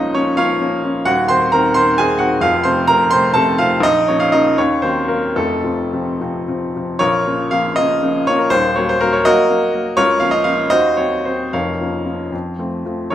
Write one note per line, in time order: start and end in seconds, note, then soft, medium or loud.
0.00 1.08 C#2 medium
0.00 0.12 F3 medium
0.00 0.12 A#3 soft
0.00 0.13 C#4 medium
0.00 0.11 D#4 medium
0.00 0.14 D#5 loud
0.14 0.35 F3 soft
0.14 0.35 A#3 medium
0.14 0.36 C#4 medium
0.14 0.37 C#5 medium
0.37 0.58 F3 medium
0.37 0.58 A#3 medium
0.37 0.58 C#4 medium
0.37 1.02 F4 medium
0.37 1.02 C#5 medium
0.37 1.06 F5 loud
0.60 0.81 F3 medium
0.60 0.81 A#3 medium
0.60 0.81 C#4 medium
0.84 1.04 F3 medium
0.84 1.04 A#3 soft
0.84 1.05 C#4 medium
1.05 1.28 D#1 medium
1.05 1.28 D#2 medium
1.05 1.27 F#4 medium
1.05 1.28 F#5 loud
1.28 1.50 D#3 medium
1.28 1.50 C4 medium
1.28 1.51 C5 medium
1.28 1.52 C6 loud
1.52 1.73 D#3 medium
1.52 1.73 C4 medium
1.52 1.74 A#4 medium
1.52 1.75 A#5 loud
1.74 1.96 D#3 medium
1.74 1.96 C4 medium
1.74 1.97 C5 loud
1.74 1.97 C6 loud
1.98 2.18 D#3 medium
1.98 2.18 C4 medium
1.98 2.19 G#4 medium
1.98 2.20 G#5 loud
2.19 2.39 D#3 medium
2.19 2.40 C4 medium
2.19 2.41 F#4 medium
2.19 2.41 F#5 medium
2.41 2.63 F1 medium
2.41 2.64 F2 medium
2.41 2.63 F4 medium
2.41 2.64 F5 loud
2.63 2.85 C3 medium
2.63 2.85 A3 medium
2.63 2.85 C4 medium
2.63 2.86 C5 medium
2.63 2.87 C6 loud
2.88 3.09 C3 medium
2.88 3.09 A3 medium
2.88 3.09 C4 medium
2.88 3.09 A#4 medium
2.88 3.10 A#5 loud
3.11 3.32 C3 medium
3.11 3.33 A3 medium
3.11 3.33 C4 medium
3.11 3.33 C5 medium
3.11 3.34 C6 loud
3.34 3.56 C3 medium
3.34 3.56 A3 medium
3.34 3.56 C4 medium
3.34 3.56 A4 medium
3.34 3.58 A5 loud
3.58 3.81 C3 medium
3.58 3.81 A3 medium
3.58 3.81 C4 medium
3.58 3.81 F4 medium
3.58 3.83 F5 loud
3.80 4.06 A#1 medium
3.80 4.07 D#4 medium
3.80 4.08 D#5 loud
4.08 4.31 C#3 soft
4.08 4.31 F3 soft
4.08 4.31 A#3 medium
4.08 4.20 C#5 medium
4.20 4.32 F5 loud
4.32 4.55 C#3 medium
4.32 4.56 F3 medium
4.32 4.56 A#3 medium
4.32 4.56 D#4 medium
4.32 4.57 D#5 loud
4.58 4.83 D#2 medium
4.58 4.82 C#4 medium
4.58 4.83 C#5 loud
4.82 5.07 D#3 medium
4.82 5.07 F#3 soft
4.82 5.07 A#3 medium
4.82 5.08 C4 medium
4.82 5.09 C5 medium
5.08 5.34 D#3 soft
5.08 5.34 F#3 soft
5.08 5.35 A#3 medium
5.08 5.36 A#4 medium
5.36 5.64 F1 medium
5.36 5.64 F2 medium
5.36 6.16 A3 medium
5.36 6.16 F4 medium
5.36 6.20 A4 medium
5.64 5.89 C3 soft
5.64 5.89 F3 soft
5.64 5.90 C4 soft
5.93 6.17 C3 soft
5.93 6.18 F3 soft
5.93 6.18 C4 medium
6.20 6.45 C3 soft
6.20 6.45 F3 soft
6.20 6.45 C4 medium
6.48 6.71 C3 soft
6.48 6.72 F3 soft
6.48 6.72 C4 soft
6.75 6.98 C3 soft
6.75 6.98 F3 soft
6.75 6.99 C4 soft
6.99 7.25 A#1 medium
6.99 7.47 F4 medium
6.99 7.47 A#4 medium
6.99 7.50 C#5 loud
7.25 7.48 C#3 medium
7.25 7.48 F3 medium
7.25 7.48 A#3 medium
7.51 7.74 C#3 medium
7.51 7.74 F3 medium
7.51 7.75 A#3 medium
7.51 7.76 F5 loud
7.76 7.99 C#3 medium
7.76 7.99 F3 medium
7.76 8.00 A#3 medium
7.76 8.26 D#5 loud
8.03 8.25 C#3 medium
8.03 8.25 F3 medium
8.03 8.25 A#3 medium
8.27 8.49 C#3 medium
8.27 8.50 F3 medium
8.27 8.50 A#3 medium
8.27 8.39 C#5 loud
8.39 8.51 A#4 medium
8.50 8.75 D#1 medium
8.50 8.75 D#2 medium
8.50 8.75 C5 loud
8.76 8.99 F#3 medium
8.76 8.99 A#3 medium
8.76 8.88 C#5 medium
8.89 9.01 C5 loud
9.01 9.23 F#3 medium
9.01 9.23 A#3 medium
9.01 9.13 A#4 loud
9.13 9.25 C#5 medium
9.25 9.47 F#3 medium
9.25 9.47 A#3 medium
9.25 9.93 F#4 loud
9.25 9.93 A#4 loud
9.25 9.96 D#5 loud
9.50 9.71 F#3 medium
9.50 9.71 A#3 medium
9.74 9.95 F#3 medium
9.74 9.95 A#3 medium
9.97 10.20 C#2 medium
9.97 10.19 F4 medium
9.97 10.19 A#4 medium
9.97 10.20 C#5 loud
10.20 10.43 F3 medium
10.20 10.43 A#3 medium
10.20 10.43 C#4 medium
10.20 10.32 F5 medium
10.31 10.44 D#5 loud
10.44 10.67 F3 medium
10.44 10.68 A#3 medium
10.44 10.68 C#4 medium
10.44 10.69 F5 loud
10.70 10.96 D#2 medium
10.70 10.95 F#4 medium
10.70 10.95 C5 medium
10.70 10.96 D#5 loud
10.97 11.22 F#3 medium
10.97 11.23 C4 medium
10.97 11.25 C#5 medium
11.25 11.51 F#3 soft
11.25 11.51 C4 medium
11.25 11.53 C5 medium
11.53 11.79 F1 medium
11.53 11.80 F2 medium
11.53 12.29 A#4 medium
11.53 12.29 C#5 medium
11.53 12.32 F5 medium
11.81 12.04 F3 soft
11.81 12.04 A#3 soft
11.81 12.05 C#4 soft
12.05 12.29 F3 soft
12.05 12.29 A#3 soft
12.05 12.30 C#4 soft
12.32 12.58 F2 medium
12.58 12.82 F3 soft
12.58 12.83 A3 soft
12.58 12.83 C4 soft
12.85 13.09 F3 soft
12.85 13.09 A3 soft
12.85 13.09 C4 soft
13.10 13.15 A#1 medium
13.10 13.15 F4 medium
13.10 13.15 C#5 medium